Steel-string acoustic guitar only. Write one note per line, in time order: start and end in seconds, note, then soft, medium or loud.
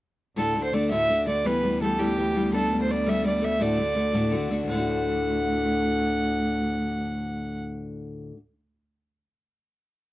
0.36 0.55 D2 medium
0.36 0.55 A2 medium
0.36 0.53 D3 medium
0.36 0.54 A3 medium
0.36 0.56 D4 medium
0.36 0.56 F#4 medium
0.54 0.71 D3 medium
0.54 0.73 A3 medium
0.54 0.74 D4 medium
0.54 0.74 F#4 medium
0.72 0.90 D3 medium
0.72 0.91 A3 medium
0.72 0.91 D4 medium
0.72 0.92 F#4 medium
0.90 1.09 D2 medium
0.90 1.09 A2 medium
0.90 1.07 D3 medium
0.90 1.08 A3 medium
0.90 1.09 D4 medium
0.90 1.10 F#4 medium
1.08 1.25 D3 medium
1.08 1.26 A3 medium
1.08 1.27 D4 medium
1.08 1.28 F#4 medium
1.26 1.44 D3 medium
1.26 1.45 A3 medium
1.26 1.45 D4 medium
1.26 1.46 F#4 medium
1.44 1.61 E3 medium
1.44 1.62 G3 medium
1.44 1.63 B3 medium
1.44 1.64 G4 medium
1.62 1.80 E3 soft
1.62 1.81 G3 medium
1.62 1.82 B3 medium
1.62 1.82 G4 medium
1.81 1.97 E3 medium
1.81 1.98 G3 medium
1.81 1.99 B3 medium
1.81 1.99 G4 medium
1.98 2.15 E3 medium
1.98 2.16 G3 medium
1.98 2.17 B3 medium
1.98 2.18 G4 medium
2.16 2.33 E3 medium
2.16 2.34 G3 medium
2.16 2.35 B3 medium
2.16 2.36 G4 medium
2.34 2.52 E3 medium
2.34 2.51 G3 medium
2.34 2.53 B3 medium
2.34 2.54 G4 medium
2.52 2.69 G3 medium
2.52 2.71 A3 medium
2.52 2.71 B3 medium
2.52 2.72 D4 medium
2.70 2.87 G3 soft
2.70 2.88 A3 medium
2.70 2.89 B3 medium
2.70 2.90 D4 medium
2.88 3.05 G3 medium
2.88 3.06 A3 medium
2.88 3.06 B3 medium
2.88 3.07 D4 medium
3.06 3.22 G3 medium
3.06 3.24 A3 medium
3.06 3.25 B3 medium
3.06 3.25 D4 medium
3.24 3.40 G3 medium
3.24 3.41 A3 medium
3.24 3.42 B3 medium
3.24 3.43 D4 medium
3.41 3.60 G3 medium
3.41 3.59 A3 medium
3.41 3.61 B3 medium
3.41 3.60 D4 medium
3.59 3.78 D2 medium
3.59 3.78 A2 medium
3.59 3.76 D3 medium
3.59 3.77 A3 medium
3.59 3.78 D4 medium
3.59 3.79 F#4 medium
3.77 3.94 D3 medium
3.77 3.95 A3 medium
3.77 3.96 D4 medium
3.77 3.97 F#4 medium
3.95 4.13 D3 medium
3.95 4.13 A3 medium
3.95 4.14 D4 medium
3.95 4.15 F#4 medium
4.13 4.32 D2 medium
4.13 4.32 A2 medium
4.13 4.30 D3 medium
4.13 4.31 A3 medium
4.13 4.32 D4 medium
4.13 4.33 F#4 medium
4.31 4.48 D3 medium
4.31 4.49 A3 medium
4.31 4.50 D4 medium
4.31 4.51 F#4 medium
4.49 4.68 D3 medium
4.49 4.68 A3 medium
4.49 4.69 D4 medium
4.49 4.69 F#4 medium
4.63 8.31 D2 medium
4.68 8.33 A2 medium
4.68 8.35 D3 medium
4.74 8.36 A3 medium
4.74 8.38 D4 medium
4.80 8.39 F#4 medium